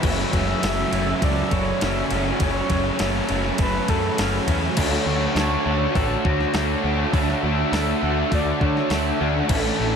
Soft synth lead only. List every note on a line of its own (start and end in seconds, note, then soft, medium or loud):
0.05 1.26 E5 loud
1.24 1.54 D5 loud
1.53 1.84 C#5 loud
1.83 2.27 E5 loud
2.44 3.27 C#5 medium
3.59 3.91 B4 loud
3.89 4.48 A4 loud
4.78 6.81 C#5 loud
7.15 8.36 E5 loud
8.34 8.66 D5 loud
8.65 8.96 C#5 loud
8.95 9.37 E5 loud
9.54 9.96 A4 medium